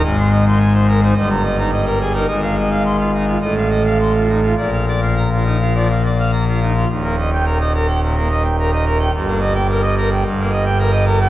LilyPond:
<<
  \new Staff \with { instrumentName = "Pipe organ" } { \time 4/4 \key ees \major \tempo 4 = 107 << { ees''16 c'''16 ees''16 c'''16 aes''16 c''16 bes'16 c''16 ees''16 bes''16 ees''16 bes''16 ees''16 bes'16 aes'16 bes'16 | ees''16 f''16 ees''16 f''16 c'''16 f'16 ees'16 f'16 ees''16 f''16 ees''16 f''16 c'''16 f'16 ees'16 f'16 | d''16 f''16 d''16 f''16 bes''16 f'16 ees'16 f'16 d''16 f''16 d''16 f''16 bes''16 f'16 ees'16 f'16 | r8. g''16 r2. |
r8. g''16 r2. | } \\ { aes,8. ees'16 r8. ees'16 g,8. ees'16 r8. ees'16 | aes,2 a,2 | bes,2 f16 r4. r16 | ees,16 bes16 ees''16 r16 bes'16 ees''16 bes'16 g''16 bes,16 bes16 ees''16 g''16 bes'16 ees''16 bes'16 g''16 |
g,16 bes16 ees''16 r16 bes'16 ees''16 bes'16 g''16 g,16 bes16 ees''16 g''16 bes'16 ees''16 bes'16 g''16 | } >> }
  \new Staff \with { instrumentName = "Pipe organ" } { \clef bass \time 4/4 \key ees \major aes,,2 g,,2 | aes,,2 a,,2 | bes,,1 | ees,,1 |
g,,2 g,,2 | }
>>